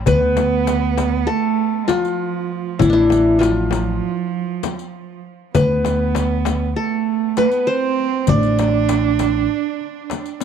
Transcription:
0.06 1.25 D2 loud
0.06 1.31 B3 medium
0.06 1.33 B4 medium
0.06 riq medium
0.06 frame drum medium
0.06 darbuka dum medium
0.22 darbuka ka soft
0.37 riq soft
0.37 darbuka tek medium
0.37 frame drum medium
0.67 riq medium
0.67 darbuka tek medium
0.67 frame drum medium
0.98 riq soft
0.98 darbuka tek medium
0.98 frame drum medium
1.27 1.86 A3 medium
1.27 2.44 A4 medium
1.84 1.93 G#3 soft
1.84 2.85 F4 medium
1.89 2.82 F3 medium
1.89 riq soft
1.89 darbuka tek medium
1.89 frame drum medium
2.05 riq soft
2.79 3.99 A1 medium
2.79 2.94 E3 medium
2.79 2.92 E4 medium
2.79 riq medium
2.79 frame drum medium
2.79 darbuka dum medium
2.90 4.39 D4 medium
2.90 3.45 E4 medium
2.95 3.43 E3 medium
3.10 riq soft
3.10 frame drum medium
3.39 5.24 F3 medium
3.39 5.19 F4 medium
3.39 darbuka tek medium
3.39 frame drum medium
3.43 riq medium
3.71 riq medium
3.71 darbuka tek medium
3.71 frame drum medium
4.63 riq soft
4.63 darbuka tek medium
4.63 frame drum medium
4.79 riq soft
5.55 6.73 D2 medium
5.55 6.73 B3 medium
5.55 6.80 B4 medium
5.55 riq medium
5.55 frame drum medium
5.55 darbuka dum medium
5.70 darbuka ka soft
5.85 riq soft
5.85 darbuka tek medium
5.85 frame drum medium
6.15 riq soft
6.15 darbuka tek medium
6.15 frame drum medium
6.45 riq soft
6.45 darbuka tek medium
6.45 frame drum medium
6.76 7.39 A3 medium
6.76 7.93 A4 medium
7.37 7.69 B3 medium
7.37 7.73 B4 medium
7.37 riq soft
7.37 darbuka tek medium
7.37 frame drum medium
7.52 riq soft
7.67 8.31 C4 loud
7.67 8.73 C5 medium
8.27 9.46 A1 loud
8.27 10.42 D4 loud
8.27 10.38 D5 medium
8.27 riq medium
8.27 darbuka dum medium
8.27 frame drum medium
8.43 riq soft
8.59 riq soft
8.59 darbuka tek medium
8.59 frame drum medium
8.89 riq medium
8.89 darbuka tek medium
8.89 frame drum medium
9.19 riq soft
9.19 darbuka tek medium
9.19 frame drum medium
9.81 darbuka ka soft
10.10 riq soft
10.10 darbuka tek medium
10.10 frame drum medium
10.26 riq soft
10.41 darbuka tek medium

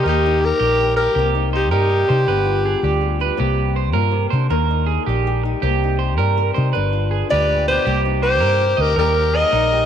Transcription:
0.00 0.61 G3 medium
0.00 0.39 A#4 medium
0.05 0.51 D#2 medium
0.05 1.14 D#3 medium
0.05 1.16 A#3 medium
0.05 0.43 D#4 medium
0.05 0.46 G4 medium
0.26 0.99 D#4 medium
0.41 0.96 G4 medium
0.41 0.96 A#4 loud
0.41 muted clean electric guitar stroke medium
0.60 1.07 A#1 medium
0.60 1.72 G3 medium
0.60 0.95 G4 medium
0.81 4.31 G4 medium
0.96 1.31 G4 medium
0.96 1.14 A#4 medium
0.96 1.31 A#4 medium
1.01 1.15 D#4 soft
1.15 1.72 C2 loud
1.15 2.28 C3 medium
1.15 1.51 G4 medium
1.19 2.29 A#3 medium
1.35 1.89 D#4 medium
1.53 1.70 D#4 medium
1.53 1.71 G4 medium
1.53 1.70 C5 medium
1.71 2.03 G2 medium
1.71 2.49 G3 medium
1.71 2.23 D#4 medium
1.71 3.16 G4 medium
1.71 2.07 A#4 medium
1.90 2.08 D#4 medium
2.09 2.25 C3 medium
2.09 2.26 D#4 medium
2.09 2.26 C5 medium
2.28 2.74 G1 medium
2.28 3.39 G2 medium
2.28 3.38 B3 medium
2.28 2.63 B4 medium
2.46 3.00 F4 medium
2.66 2.83 G#4 medium
2.83 3.30 D2 medium
2.83 5.09 G3 medium
2.83 3.19 G4 medium
3.01 3.19 F4 soft
3.20 3.37 F4 soft
3.20 3.38 B4 medium
3.37 3.95 C2 loud
3.37 4.10 C3 medium
3.37 4.49 A#3 medium
3.37 3.75 G4 medium
3.76 3.93 C5 medium
3.93 4.26 G2 medium
3.93 4.12 A#2 medium
3.93 4.29 A#4 medium
4.12 4.31 C3 medium
4.30 4.48 C3 medium
4.30 4.50 D3 medium
4.30 4.49 C5 medium
4.50 4.97 D#2 loud
4.50 5.60 D#3 medium
4.50 5.62 A#3 medium
4.50 4.86 A#4 medium
4.70 5.44 D#4 medium
4.86 5.05 G#4 medium
5.06 5.53 A#1 medium
5.06 6.18 G3 medium
5.06 5.42 G4 medium
5.27 6.37 G4 medium
5.44 5.61 D#4 medium
5.44 muted clean electric guitar stroke medium
5.62 6.20 C2 medium
5.62 6.74 C3 medium
5.62 6.74 A#3 medium
5.62 5.97 G4 medium
5.84 6.55 D#4 medium
5.99 6.17 C5 medium
6.18 6.50 G2 medium
6.18 6.96 G3 medium
6.18 6.53 A#4 medium
6.37 6.72 A#4 medium
6.54 6.72 C3 medium
6.54 6.72 D#4 medium
6.54 6.72 C5 medium
6.73 7.22 G1 loud
6.73 7.28 G2 medium
6.73 7.84 D4 medium
6.73 7.09 B4 medium
6.93 7.83 F4 medium
7.11 7.29 G#4 medium
7.29 7.77 D2 medium
7.29 7.48 G2 medium
7.29 7.66 G4 medium
7.29 7.65 B4 medium
7.29 7.64 D5 medium
7.48 7.67 G#2 medium
7.68 7.86 B2 soft
7.68 8.03 G4 medium
7.68 7.85 B4 medium
7.68 8.02 C5 medium
7.85 8.42 C2 loud
7.85 8.97 C3 medium
7.85 8.97 A#3 medium
7.85 8.21 G4 medium
8.05 8.79 D#4 medium
8.22 8.80 G4 medium
8.22 8.40 C5 medium
8.22 8.83 C5 medium
8.40 8.73 G2 medium
8.40 8.76 A#4 medium
8.61 8.95 A#4 medium
8.77 8.94 D2 medium
8.77 8.96 D#4 medium
8.77 8.98 G4 medium
8.77 8.95 D#5 medium
8.81 8.98 A#4 medium
8.96 9.43 D#2 medium
8.96 9.86 D#3 medium
8.96 9.52 G3 medium
8.96 9.86 A#3 medium
8.96 9.17 D#4 medium
8.96 9.36 G4 medium
8.96 9.72 G4 medium
8.96 9.32 A#4 medium
8.96 9.37 A#4 medium
9.18 9.86 D#4 medium
9.34 9.51 G#4 medium
9.34 9.86 A#4 medium
9.34 9.86 D#5 loud
9.52 9.86 A#1 medium
9.52 9.86 G3 medium
9.52 9.86 D#4 medium
9.72 9.86 G4 medium

